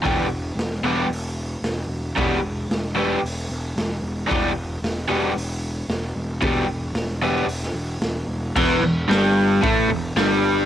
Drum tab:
CC |----------------|----------------|----------------|----------------|
HH |o---o---o---o---|o---o---o---o---|o---o---o---o---|o---o---o---o---|
SD |----o-------o---|----o-------o---|----o-------o---|----o----o--o---|
BD |o---------------|o---------------|o---------------|o---------------|

CC |x---------------|
HH |----o---o---o---|
SD |----o-------o---|
BD |o-------o-------|